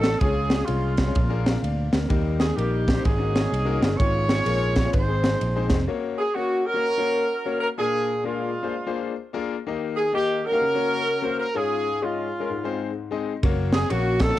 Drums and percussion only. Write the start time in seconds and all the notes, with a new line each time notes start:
0.04 snare, ride
0.21 kick, ride
0.50 snare, ride
0.68 ride
0.97 kick, snare, ride
1.15 kick, ride
1.46 snare, ride
1.64 ride
1.93 snare, ride
2.10 kick, ride
2.40 snare, ride
2.58 ride
2.88 kick, snare, ride
3.05 kick, ride
3.35 snare, ride
3.54 ride
3.82 snare, ride
4.00 kick, ride
4.29 snare, ride
4.46 ride
4.76 kick, snare, ride
4.93 kick, ride
5.24 snare, ride
5.41 ride
5.70 kick, snare, ride
13.43 kick, ride
13.73 snare, ride
13.90 ride
14.20 kick, snare, ride